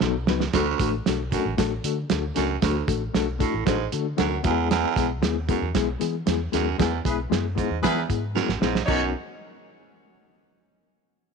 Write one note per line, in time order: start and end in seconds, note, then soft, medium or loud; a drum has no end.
0.00 0.28 B1 medium
0.00 0.14 F#3 medium
0.00 0.15 B3 medium
0.00 0.15 D#4 medium
0.00 0.15 F#4 medium
0.00 0.15 A4 loud
0.00 snare medium
0.27 0.47 C#2 medium
0.27 0.41 F#3 medium
0.27 0.41 B3 medium
0.27 0.42 D#4 medium
0.27 0.42 F#4 loud
0.27 0.42 B4 loud
0.27 snare loud
0.40 snare medium
0.53 0.73 D2 loud
0.53 0.91 D2 loud
0.53 0.67 A3 loud
0.53 0.68 D4 loud
0.53 0.68 F#4 loud
0.53 0.68 A4 loud
0.53 kick loud
0.53 snare loud
0.53 closed hi-hat medium
0.79 0.99 A1 medium
0.79 0.94 A3 medium
0.79 0.93 D4 medium
0.79 0.94 F#4 medium
0.79 0.94 A4 medium
0.79 kick loud
0.79 closed hi-hat medium
1.06 1.35 B1 medium
1.06 1.19 A3 loud
1.06 1.20 D4 medium
1.06 1.20 F#4 medium
1.06 1.21 A4 loud
1.06 snare loud
1.06 closed hi-hat medium
1.32 1.53 F#2 medium
1.32 1.46 A3 medium
1.32 1.46 D4 medium
1.32 1.46 F#4 medium
1.32 1.46 A4 loud
1.32 kick medium
1.32 closed hi-hat medium
1.45 1.55 A1 medium
1.58 1.78 A1 medium
1.58 1.71 A3 loud
1.58 1.72 D4 medium
1.58 1.72 F#4 loud
1.58 1.72 A4 loud
1.58 kick medium
1.58 snare loud
1.58 closed hi-hat loud
1.84 2.03 D3 loud
1.84 1.97 A3 medium
1.84 1.97 D4 medium
1.84 1.98 F#4 medium
1.84 1.98 A4 medium
1.84 closed hi-hat medium
2.10 2.30 D2 medium
2.10 2.23 A3 medium
2.10 2.23 D4 medium
2.10 2.24 F#4 medium
2.10 2.24 A4 medium
2.10 snare loud
2.10 closed hi-hat medium
2.35 2.56 C#2 loud
2.35 2.57 F#2 medium
2.35 2.49 A3 loud
2.35 2.49 D4 medium
2.35 2.49 F#4 medium
2.35 2.50 A4 loud
2.35 snare soft
2.35 closed hi-hat medium
2.62 2.81 D2 loud
2.62 2.83 D2 medium
2.62 2.75 A3 loud
2.62 2.75 D4 loud
2.62 2.76 F#4 loud
2.62 2.76 A4 loud
2.62 kick loud
2.62 snare loud
2.62 closed hi-hat loud
2.87 3.07 A1 medium
2.87 3.01 A3 medium
2.87 3.01 D4 medium
2.87 3.02 F#4 medium
2.87 3.02 A4 medium
2.87 kick loud
2.87 closed hi-hat medium
3.14 3.43 B1 medium
3.14 3.27 A3 loud
3.14 3.28 D4 loud
3.14 3.28 F#4 loud
3.14 3.28 A4 loud
3.14 snare loud
3.14 closed hi-hat medium
3.39 3.61 A2 medium
3.39 3.53 A3 loud
3.39 3.53 D4 medium
3.39 3.54 F#4 medium
3.39 3.54 A4 loud
3.39 kick medium
3.39 closed hi-hat medium
3.54 3.63 A1 medium
3.65 3.86 A1 medium
3.65 3.87 G#2 medium
3.65 3.79 A3 loud
3.65 3.79 D4 loud
3.65 3.80 F#4 loud
3.65 3.80 A4 loud
3.65 kick medium
3.65 snare loud
3.65 closed hi-hat loud
3.92 4.12 D3 medium
3.92 4.06 A3 medium
3.92 4.06 D4 medium
3.92 4.06 F#4 medium
3.92 4.07 A4 medium
3.92 closed hi-hat medium
4.17 4.38 D2 loud
4.17 4.39 F#2 medium
4.17 4.31 A3 medium
4.17 4.31 D4 medium
4.17 4.32 F#4 medium
4.17 4.32 A4 loud
4.17 4.42 F#5 medium
4.17 snare loud
4.17 closed hi-hat medium
4.43 4.83 E2 loud
4.43 4.66 E2 medium
4.43 4.86 G#3 loud
4.43 4.86 B3 loud
4.43 4.86 E4 medium
4.43 4.51 F#4 medium
4.43 4.68 E5 medium
4.43 kick loud
4.43 snare soft
4.43 closed hi-hat medium
4.51 4.89 G#4 loud
4.71 5.07 E2 loud
4.71 snare loud
4.71 closed hi-hat loud
4.96 5.22 B1 medium
4.96 5.10 G#3 medium
4.96 5.10 B3 medium
4.96 5.11 E4 medium
4.96 5.11 G#4 loud
4.96 kick loud
4.96 closed hi-hat medium
5.22 5.51 D#2 loud
5.22 5.35 G#3 loud
5.22 5.36 B3 loud
5.22 5.36 E4 loud
5.22 5.36 G#4 loud
5.22 snare loud
5.22 closed hi-hat medium
5.48 5.70 F#2 medium
5.48 5.62 G#3 medium
5.48 5.62 B3 medium
5.48 5.62 E4 medium
5.48 5.63 G#4 loud
5.48 kick medium
5.48 closed hi-hat medium
5.62 5.71 E2 medium
5.74 5.94 B1 loud
5.74 5.88 G#3 loud
5.74 5.88 B3 medium
5.74 5.88 E4 loud
5.74 5.89 G#4 loud
5.74 kick medium
5.74 snare loud
5.74 closed hi-hat loud
6.00 6.21 E3 loud
6.00 6.14 G#3 medium
6.00 6.14 B3 medium
6.00 6.14 E4 medium
6.00 6.14 G#4 medium
6.00 closed hi-hat medium
6.26 6.47 E2 loud
6.26 6.40 G#3 loud
6.26 6.40 B3 medium
6.26 6.40 E4 medium
6.26 6.41 G#4 loud
6.26 snare loud
6.26 closed hi-hat loud
6.52 6.73 D#2 medium
6.52 6.74 F#2 medium
6.52 6.66 G#3 loud
6.52 6.66 B3 medium
6.52 6.66 E4 medium
6.52 6.67 G#4 loud
6.52 snare soft
6.52 closed hi-hat medium
6.78 7.00 E2 medium
6.78 6.99 E2 loud
6.78 6.92 G#3 loud
6.78 6.92 B3 loud
6.78 6.92 E4 loud
6.78 6.93 G#4 loud
6.78 kick loud
6.78 snare loud
6.78 closed hi-hat loud
7.05 7.24 B1 medium
7.05 7.18 G#3 medium
7.05 7.18 B3 medium
7.05 7.17 E4 medium
7.05 7.19 E4 medium
7.05 7.17 G#4 medium
7.05 7.19 G#4 medium
7.05 7.17 B4 medium
7.05 kick loud
7.05 closed hi-hat medium
7.30 7.60 F#2 medium
7.30 7.44 G#3 loud
7.30 7.44 B3 medium
7.30 7.44 E4 medium
7.30 7.45 G#4 loud
7.30 snare loud
7.30 closed hi-hat medium
7.55 7.78 G#2 medium
7.55 7.70 G#3 medium
7.55 7.70 B3 medium
7.55 7.70 E4 medium
7.55 7.70 G#4 medium
7.55 kick medium
7.55 closed hi-hat medium
7.70 7.80 E2 medium
7.82 8.04 E2 medium
7.82 8.03 E3 loud
7.82 7.96 G#3 loud
7.82 7.97 B3 loud
7.82 8.00 E4 medium
7.82 7.97 E4 loud
7.82 8.00 G#4 medium
7.82 7.97 G#4 loud
7.82 8.00 B4 loud
7.82 kick medium
7.82 snare loud
7.82 closed hi-hat loud
8.08 8.39 G#2 medium
8.08 8.22 G#3 medium
8.08 8.22 B3 medium
8.08 8.23 E4 medium
8.08 8.23 G#4 medium
8.08 kick medium
8.08 closed hi-hat medium
8.35 8.57 F#2 medium
8.35 8.48 G#3 medium
8.35 8.49 B3 medium
8.35 8.49 E4 medium
8.35 8.49 G#4 medium
8.35 snare medium
8.49 8.58 G#1 medium
8.49 snare medium
8.60 8.81 A#1 medium
8.60 8.83 G#2 medium
8.60 8.74 G#3 medium
8.60 8.75 B3 loud
8.60 8.75 E4 medium
8.60 8.75 G#4 loud
8.60 snare medium
8.75 snare medium
8.85 9.12 B1 loud
8.85 9.12 F#2 medium
8.85 9.04 F#3 medium
8.85 9.12 B3 medium
8.85 9.12 C#4 medium
8.85 9.05 D#4 medium
8.85 9.12 D#4 medium
8.85 9.12 F#4 medium
8.85 9.05 C#5 medium
8.85 kick loud
8.85 crash medium